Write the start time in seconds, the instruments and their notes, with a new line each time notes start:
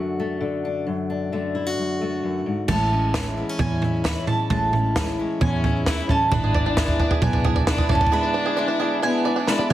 Already playing: steel-string acoustic guitar F#2 D3 A3 D4 F#4
0.20 steel-string acoustic guitar A3
0.41 steel-string acoustic guitar D3
0.65 steel-string acoustic guitar D4
0.87 steel-string acoustic guitar F#2
1.10 steel-string acoustic guitar D4
1.32 steel-string acoustic guitar D3 A3
1.55 steel-string acoustic guitar E4
1.66 steel-string acoustic guitar F#4
1.78 steel-string acoustic guitar F#2
2.01 steel-string acoustic guitar A3
2.23 steel-string acoustic guitar F#2
2.46 steel-string acoustic guitar G#2
2.68 fingered electric bass A1, steel-string acoustic guitar A2 E3 G#3 C#4 E4, mandolin A5, kick, floor tom, crash
2.91 steel-string acoustic guitar G#3 C#4 E4
3.14 steel-string acoustic guitar A2 E3 G#3 C#4 E4, kick, snare
3.37 steel-string acoustic guitar G#3 B3 C#4 E4
3.49 steel-string acoustic guitar C#4
3.59 fingered electric bass E2, steel-string acoustic guitar E2 E3 G#3 C#4 E4, mandolin G#5, kick, floor tom
3.82 steel-string acoustic guitar G#3 C#4 E4, floor tom
4.04 steel-string acoustic guitar A2 E3 G#3 C#4 E4, mandolin B5, kick, snare
4.27 steel-string acoustic guitar G#3 C#4 E4, mandolin A5, floor tom
4.50 fingered electric bass A1, steel-string acoustic guitar A2 E3 G#3 C#4 E4, mandolin A5, kick, floor tom
4.73 steel-string acoustic guitar G#3 C#4 E4, floor tom
4.96 steel-string acoustic guitar A2 E3 G#3 C#4 E4, kick, snare
5.18 steel-string acoustic guitar G#3 C#4 E4
5.41 fingered electric bass E2, steel-string acoustic guitar E2 E3 G#3 C#4 E4, fiddle C#4, mandolin G#5, kick, floor tom
5.64 steel-string acoustic guitar G#3 C#4 E4, kick, floor tom
5.86 steel-string acoustic guitar A2 E3 G#3 C#4 E4, fiddle E4, mandolin B5, kick, snare
6.09 steel-string acoustic guitar G#3 C#4 E4, fiddle C#4, mandolin A5, kick, floor tom
6.30 fingered electric bass G#1, string section D3 G#3 B3 E4, steel-string acoustic guitar G#3 B3 D4 E4, fiddle D4, five-string banjo D4, mandolin B5, kick, floor tom
6.44 five-string banjo G#4
6.54 steel-string acoustic guitar B3 D4 E4, five-string banjo D5, kick
6.66 five-string banjo D4
6.77 steel-string acoustic guitar G#3 B3 D4 E4, five-string banjo G#4, kick, snare
6.88 kick
6.99 steel-string acoustic guitar B3 D4 E4, five-string banjo D4, kick
7.11 five-string banjo G#4, kick
7.22 fingered electric bass B1, steel-string acoustic guitar G#3 B3 D4 E4, fiddle B3, five-string banjo D5, mandolin G#5, kick, floor tom
7.33 five-string banjo D4, kick
7.44 steel-string acoustic guitar B3 D4 E4, five-string banjo G#4, kick, floor tom
7.56 five-string banjo D5, kick
7.67 steel-string acoustic guitar G#3 B3 D4 E4, five-string banjo D4, fiddle D4, mandolin B5, kick, snare
7.78 five-string banjo G#4, kick
7.89 steel-string acoustic guitar B3 D4 E4, fiddle C#4, five-string banjo D5, mandolin A5, kick, floor tom
7.95 kick
8.01 five-string banjo D4, kick
8.07 kick
8.12 steel-string acoustic guitar G#3 B3 D4 E4, fiddle D4, five-string banjo G#4, mandolin B5
8.23 five-string banjo D5
8.34 steel-string acoustic guitar B3 D4 E4, five-string banjo D4
8.46 five-string banjo G#4
8.57 steel-string acoustic guitar G#3 B3 D4 E4, five-string banjo D5
8.68 five-string banjo D4
8.80 steel-string acoustic guitar B3 D4 E4, five-string banjo G#4
9.02 steel-string acoustic guitar G#3 B3 D4 E4, fiddle B3, five-string banjo D4, mandolin G#5
9.25 steel-string acoustic guitar B3 D4 E4, five-string banjo D5
9.36 five-string banjo D4
9.47 steel-string acoustic guitar G#3 B3 D4 E4, fiddle D4, mandolin B5, snare
9.59 five-string banjo D5, high tom